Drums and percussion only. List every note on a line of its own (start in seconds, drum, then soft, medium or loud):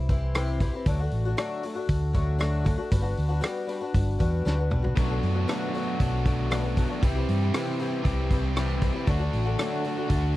0.09 kick medium
0.09 open hi-hat soft
0.34 cross-stick medium
0.34 open hi-hat medium
0.60 kick medium
0.60 open hi-hat soft
0.86 kick medium
0.86 open hi-hat medium
1.11 open hi-hat soft
1.37 cross-stick medium
1.37 open hi-hat medium
1.63 open hi-hat soft
1.89 kick medium
1.89 open hi-hat medium
2.14 kick medium
2.14 open hi-hat soft
2.40 cross-stick medium
2.40 open hi-hat medium
2.66 kick medium
2.66 open hi-hat soft
2.91 kick medium
2.91 open hi-hat medium
3.17 open hi-hat soft
3.43 cross-stick medium
3.43 open hi-hat soft
3.69 open hi-hat soft
3.94 kick medium
3.94 open hi-hat medium
4.20 kick medium
4.20 open hi-hat soft
4.47 snare soft
4.71 mid tom medium
4.84 floor tom medium
4.97 kick medium
4.97 open hi-hat medium
5.23 open hi-hat soft
5.48 cross-stick medium
5.48 open hi-hat soft
5.74 open hi-hat soft
6.00 kick medium
6.00 open hi-hat medium
6.26 kick medium
6.26 open hi-hat soft
6.51 cross-stick medium
6.51 open hi-hat medium
6.77 kick medium
6.77 open hi-hat soft
7.03 kick medium
7.03 open hi-hat medium
7.29 open hi-hat soft
7.54 cross-stick medium
7.54 open hi-hat medium
7.79 open hi-hat soft
8.05 kick medium
8.05 open hi-hat medium
8.30 kick medium
8.30 open hi-hat soft
8.56 cross-stick medium
8.56 open hi-hat medium
8.82 kick medium
8.82 open hi-hat soft
9.07 kick medium
9.07 open hi-hat medium
9.33 open hi-hat soft
9.58 cross-stick medium
9.58 open hi-hat medium
9.84 open hi-hat soft
10.09 kick medium
10.09 open hi-hat medium